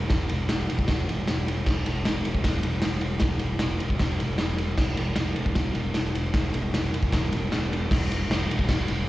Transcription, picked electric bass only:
0.11 E1
0.31 E1
0.50 E1
0.71 E1
0.89 E1
1.09 E1
1.29 E1
1.66 E1
1.86 E1
2.05 E1
2.26 E1
2.45 E1
2.65 E1
2.84 E1
3.21 E1
3.43 E1
3.61 E1
3.82 E1
4.00 E1
4.21 E1
4.40 E1
4.78 E1
4.98 E1
5.16 E1
5.36 E1
5.55 E1
5.75 E1
5.96 E1
6.34 E1
6.53 E1
6.73 E1
6.94 E1
7.12 E1
7.32 E1
7.52 E1
7.91 E1
8.29 E1
8.49 E1
8.69 E1
8.90 E1

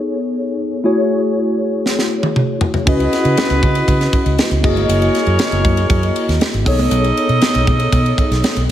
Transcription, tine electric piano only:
Already playing: B3 D#4 G#4 A4 C#5
0.84 A3 E4 F#4 G#4 C#5
2.86 C#4 E4 F#4 B4 D#5
4.62 A#3 E4 F#4 G#4 D#5
6.65 B3 D#4 G#4 A4 C#5

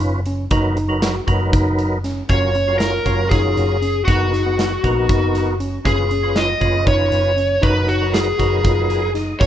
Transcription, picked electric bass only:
0.00 F#1
0.51 F#1
1.28 F#1
1.53 F#1
2.30 F#1
3.06 F#1
3.31 F#1
3.57 F#1
4.08 F#1
4.84 A#1
5.09 F#1
5.85 F#1
6.61 F#1
6.87 F#1
7.12 F#1
7.63 F#1
8.39 F#1
8.65 F#1
9.41 F#1

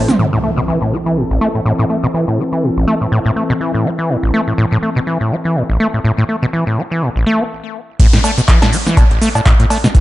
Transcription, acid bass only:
0.08 G3
0.19 A2
0.33 A2
0.44 A3
0.57 B2
0.68 E3
0.82 A2
0.92 A3
1.06 E3
1.17 A2
1.30 A1
1.41 A3
1.55 A2
1.65 A2
1.79 A2
1.90 A3
2.04 B2
2.14 E3
2.28 A2
2.39 A3
2.52 E3
2.63 A2
2.77 A1
2.87 A3
3.01 A2
3.12 A2
3.26 A2
3.36 A3
3.50 B2
3.61 E3
3.74 A2
3.85 A3
3.99 E3
4.09 A2
4.23 A1
4.34 A3
4.48 A2
4.58 A2
4.72 A2
4.83 A3
4.96 B2
5.07 E3
5.21 A2
5.31 A3
5.45 E3
5.56 A2
5.70 A1
5.80 A3
5.94 A2
6.04 A2
6.18 A2
6.29 A3
6.43 B2
6.53 E3
6.67 A2
6.78 A3
6.91 E3
7.02 A2
7.16 A1
7.26 A3
7.40 C4
7.99 A2
8.13 A2
8.24 A3
8.38 B2
8.48 E3
8.62 A2
8.73 A3
8.87 E3
8.97 A2
9.11 A1
9.22 A3
9.35 A2
9.46 A2
9.60 A2
9.70 A3
9.84 B2
9.95 E3

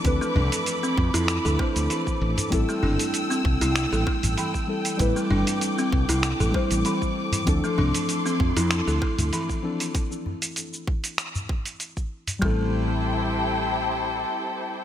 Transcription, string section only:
Already playing: A4 D6
0.05 B5
2.52 G5 E6
4.99 D6
7.47 A4 C6
12.42 E4 G4 A4 C5 G5

